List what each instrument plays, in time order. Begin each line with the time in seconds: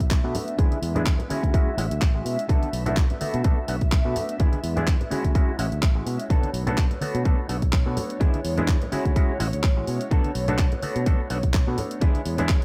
Already playing: fingered electric bass B1, violin section E5
0.00 kick, closed hi-hat
0.11 kick, clap, closed hi-hat
0.23 fingered electric bass B2, clav A3 B3 D4 F#4, muted clean electric guitar stroke
0.34 muted clean electric guitar stroke, open hi-hat, low conga
0.48 closed hi-hat, tambourine
0.58 fingered electric bass E2, clav G#3 B3 D4 E4, clean electric guitar D4 E4 G#4, kick, closed hi-hat
0.71 closed hi-hat, tambourine, high conga
0.82 fingered electric bass E2, open hi-hat
0.95 clav G#3 B3 D4 E4, clean electric guitar D4 E4 G#4, closed hi-hat, tambourine, low conga
1.06 kick, clap, closed hi-hat
1.19 closed hi-hat, tambourine, low conga
1.29 clav G#3 C#4 E4 F#4, clean electric guitar C#4 E4 F#4 G#4, muted fingered electric bass stroke, open hi-hat, high conga
1.43 fingered electric bass D2, kick, closed hi-hat
1.54 clav G#3 C#4 E4 F#4, kick, closed hi-hat
1.67 muted fingered electric bass stroke, tambourine
1.77 fingered electric bass A1, clav G#3 C#4 E4 F#4, muted clean electric guitar stroke, open hi-hat
1.91 fingered electric bass D2, closed hi-hat, tambourine
2.02 fingered electric bass A1, kick, clap, closed hi-hat
2.14 clav G#3 C#4 E4 F#4, muted clean electric guitar stroke
2.25 fingered electric bass B2, muted clean electric guitar stroke, open hi-hat
2.38 closed hi-hat, tambourine
2.49 fingered electric bass B1, clav A3 B3 D4 F#4, clean electric guitar B3 D4 A4, kick, closed hi-hat
2.62 closed hi-hat, tambourine, high conga
2.73 fingered electric bass B1, open hi-hat
2.86 clav A3 B3 D4 F#4, clean electric guitar B3 D4 E4, closed hi-hat, tambourine, low conga
2.97 kick, clap, closed hi-hat
3.10 closed hi-hat, tambourine, low conga
3.20 clav A3 B3 D4 F#4, muted clean electric guitar stroke, muted fingered electric bass stroke, open hi-hat, high conga
3.34 fingered electric bass B2, closed hi-hat, tambourine
3.44 fingered electric bass B1, clav A3 B3 D4 F#4, clean electric guitar B3 D4 A4, kick, closed hi-hat
3.57 muted fingered electric bass stroke, tambourine
3.68 fingered electric bass B1, clav A3 B3 D4 F#4, muted clean electric guitar stroke, open hi-hat
3.81 kick, closed hi-hat, tambourine
3.92 kick, clap, closed hi-hat
4.05 fingered electric bass B2, clav A3 B3 D4 F#4, muted clean electric guitar stroke
4.15 muted clean electric guitar stroke, open hi-hat, low conga
4.29 closed hi-hat, tambourine
4.39 fingered electric bass E2, clav G#3 B3 D4 E4, clean electric guitar D4 E4 G#4, kick, closed hi-hat
4.53 closed hi-hat, tambourine, high conga
4.63 fingered electric bass E2, open hi-hat
4.76 clav G#3 B3 D4 E4, clean electric guitar D4 E4 G#4, closed hi-hat, tambourine, low conga
4.87 kick, clap, closed hi-hat
5.01 closed hi-hat, tambourine, low conga
5.11 clav G#3 C#4 E4 F#4, clean electric guitar C#4 E4 F#4 G#4, muted fingered electric bass stroke, open hi-hat, high conga
5.24 fingered electric bass D2, kick, closed hi-hat, tambourine
5.35 clav G#3 C#4 E4 F#4, kick, closed hi-hat
5.48 muted fingered electric bass stroke, tambourine
5.58 fingered electric bass A1, clav G#3 C#4 E4 F#4, muted clean electric guitar stroke, open hi-hat
5.72 fingered electric bass D2, closed hi-hat, tambourine
5.82 fingered electric bass A1, kick, clap, closed hi-hat
5.95 clav G#3 C#4 E4 F#4, muted clean electric guitar stroke, tambourine
6.06 fingered electric bass B2, muted clean electric guitar stroke, open hi-hat
6.19 closed hi-hat, tambourine
6.30 fingered electric bass B1, clav A3 B3 D4 F#4, clean electric guitar B3 D4 A4, violin section C#5, kick, closed hi-hat
6.43 closed hi-hat, tambourine, high conga
6.53 fingered electric bass B1, open hi-hat
6.67 clav A3 B3 D4 F#4, clean electric guitar B3 D4 A4, closed hi-hat, tambourine, low conga
6.78 kick, clap, closed hi-hat
6.91 closed hi-hat, tambourine, low conga
7.01 clav A3 B3 D4 F#4, muted clean electric guitar stroke, muted fingered electric bass stroke, open hi-hat, high conga
7.15 fingered electric bass B2, closed hi-hat, tambourine
7.25 fingered electric bass B1, clav A3 B3 D4 F#4, clean electric guitar B3 D4 A4, kick, closed hi-hat
7.38 muted fingered electric bass stroke, tambourine
7.49 fingered electric bass B1, clav A3 B3 D4 F#4, muted clean electric guitar stroke, open hi-hat
7.62 kick, closed hi-hat, tambourine
7.73 kick, clap, closed hi-hat
7.86 fingered electric bass B2, clav A3 B3 D4 F#4, muted clean electric guitar stroke, tambourine
7.96 muted clean electric guitar stroke, open hi-hat, low conga
8.10 closed hi-hat, tambourine
8.20 fingered electric bass E2, clav G#3 B3 D4 E4, clean electric guitar D4 E4 G#4, kick, closed hi-hat
8.34 muted fingered electric bass stroke, closed hi-hat, tambourine, high conga
8.44 fingered electric bass E2, open hi-hat
8.57 clav G#3 B3 D4 E4, clean electric guitar D4 E4 G#4, closed hi-hat, tambourine, low conga
8.68 kick, clap, closed hi-hat
8.82 closed hi-hat, tambourine, low conga
8.92 clav G#3 C#4 E4 F#4, clean electric guitar C#4 E4 F#4 G#4, muted fingered electric bass stroke, open hi-hat, high conga
9.05 fingered electric bass D2, kick, closed hi-hat, tambourine
9.16 clav G#3 C#4 E4 F#4, kick, closed hi-hat, tambourine
9.29 muted fingered electric bass stroke, tambourine
9.40 fingered electric bass A1, clav G#3 C#4 E4 F#4, muted clean electric guitar stroke, open hi-hat
9.53 fingered electric bass D2, closed hi-hat, tambourine
9.63 fingered electric bass A1, kick, clap, closed hi-hat
9.76 clav G#3 C#4 E4 F#4, muted clean electric guitar stroke, tambourine
9.87 fingered electric bass B2, muted clean electric guitar stroke, open hi-hat
10.01 closed hi-hat, tambourine
10.11 fingered electric bass B1, clav A3 B3 D4 F#4, clean electric guitar B3 D4 A4, kick, closed hi-hat
10.24 muted fingered electric bass stroke, closed hi-hat, tambourine, high conga
10.35 fingered electric bass B1, open hi-hat
10.48 clav A3 B3 D4 F#4, clean electric guitar B3 D4 A4, closed hi-hat, tambourine, low conga
10.58 kick, clap, closed hi-hat
10.72 closed hi-hat, tambourine, low conga
10.82 clav A3 B3 D4 F#4, muted clean electric guitar stroke, muted fingered electric bass stroke, open hi-hat, high conga
10.96 fingered electric bass B2, closed hi-hat, tambourine
11.06 fingered electric bass B1, clav A3 B3 D4 F#4, clean electric guitar B3 D4 A4, kick, closed hi-hat
11.20 muted fingered electric bass stroke, tambourine
11.30 fingered electric bass B1, clav A3 B3 D4 F#4, muted clean electric guitar stroke, open hi-hat
11.43 kick, closed hi-hat, tambourine
11.54 kick, clap, closed hi-hat
11.67 fingered electric bass B2, clav A3 B3 D4 F#4, muted clean electric guitar stroke, tambourine
11.78 muted clean electric guitar stroke, open hi-hat, low conga
11.91 closed hi-hat, tambourine
12.01 fingered electric bass E2, clav G#3 B3 D4 E4, clean electric guitar D4 E4 G#4, kick, closed hi-hat
12.15 muted fingered electric bass stroke, closed hi-hat, tambourine, high conga
12.25 fingered electric bass E2, open hi-hat
12.38 clav G#3 B3 D4 E4, clean electric guitar D4 E4 G#4, closed hi-hat, tambourine, low conga
12.49 kick, clap, closed hi-hat